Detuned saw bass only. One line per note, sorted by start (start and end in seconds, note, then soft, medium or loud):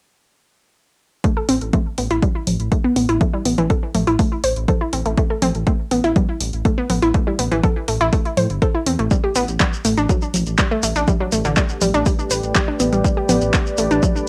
1.49 1.58 A1 medium
1.61 1.71 A1 medium
1.98 2.08 A1 medium
2.11 2.20 A1 medium
2.47 2.57 A1 medium
2.60 2.69 A1 medium
2.96 3.06 A1 medium
3.09 3.18 A1 medium
3.45 3.55 A1 medium
3.58 3.67 A1 medium
3.95 4.04 A1 medium
4.07 4.16 A1 medium
4.44 4.54 A1 medium
4.57 4.66 A1 medium
4.93 5.03 A1 medium
5.06 5.15 A1 medium
5.42 5.52 A1 medium
5.55 5.64 A1 medium
5.91 6.01 A1 medium
6.04 6.13 A1 medium
6.41 6.50 A1 medium
6.53 6.62 A1 medium
6.90 6.99 A1 medium
7.02 7.12 A1 medium
7.39 7.49 A1 medium
7.52 7.61 A1 medium
7.88 7.98 A1 medium
8.01 8.10 A1 medium
8.37 8.47 A2 medium
8.50 8.59 G1 medium
8.86 8.96 E2 medium
8.99 9.08 A1 medium
9.35 9.45 A1 medium
9.48 9.57 A1 medium
9.85 9.95 A1 medium
9.97 10.07 A1 medium
10.34 10.44 A1 medium
10.47 10.56 A1 medium
10.83 10.93 A1 medium
10.96 11.05 A1 medium
11.32 11.42 A1 medium
11.45 11.54 A1 medium
11.81 11.91 A1 medium
11.94 12.03 A1 medium
12.31 12.40 A1 medium
12.43 12.53 A1 medium
12.80 12.90 A1 medium
12.92 13.02 A1 medium
13.29 13.39 A1 medium
13.42 13.51 A1 medium
13.78 13.88 A1 loud
13.91 14.00 A1 medium